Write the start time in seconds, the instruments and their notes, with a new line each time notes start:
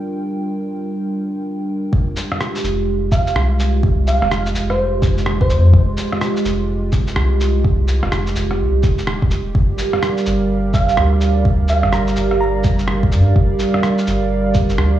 Already playing: analog synth pad G3 D4 F4 A#4 G5
1.92 sub bass F1, analog synth pad G#3 F4 G4, kick
2.17 shaker
2.32 cross-stick
2.41 cross-stick, shaker
2.56 shaker
2.64 sub bass F1, shaker
3.12 fm electric piano F5, kick, shaker
3.27 shaker
3.35 sub bass C2, cross-stick
3.60 shaker
3.83 kick
4.07 fm electric piano F5, shaker
4.21 sub bass F1, cross-stick
4.31 cross-stick, shaker
4.46 shaker
4.55 sub bass F1, shaker
4.70 fm electric piano C5, cross-stick
5.02 kick, shaker
5.18 shaker
5.26 cross-stick
5.41 fm electric piano C5, kick
5.50 sub bass F2, shaker
5.74 sub bass F1, kick
5.97 shaker
6.12 cross-stick
6.21 cross-stick, shaker
6.37 shaker
6.45 sub bass F1, shaker
6.92 kick, shaker
7.07 shaker
7.16 sub bass C2, cross-stick
7.41 shaker
7.65 kick
7.88 shaker
8.03 sub bass F1, cross-stick
8.12 cross-stick, shaker
8.27 shaker
8.36 sub bass F1, shaker
8.51 cross-stick
8.60 sub bass C2
8.83 sub bass D#1, kick, shaker
8.98 shaker
9.07 cross-stick
9.22 kick
9.31 shaker
9.54 sub bass G1, analog synth pad G3 A#4 D5 F5, kick
9.78 shaker
9.93 cross-stick
10.03 cross-stick, shaker
10.17 shaker
10.26 sub bass G1, shaker
10.74 fm electric piano F5, kick, shaker
10.89 shaker
10.97 sub bass D2, cross-stick
11.21 shaker
11.45 kick
11.68 fm electric piano F5, shaker
11.83 sub bass G1, cross-stick
11.93 fm electric piano A#5, cross-stick, shaker
12.07 shaker
12.16 sub bass G1, shaker
12.31 cross-stick
12.41 fm electric piano A#5
12.64 kick, shaker
12.79 shaker
12.88 cross-stick
13.03 kick
13.12 sub bass G2, shaker
13.36 sub bass G1, kick
13.59 shaker
13.74 cross-stick
13.83 cross-stick, shaker
13.98 shaker
14.07 sub bass G1, shaker
14.54 kick, shaker
14.69 shaker
14.78 sub bass D2, cross-stick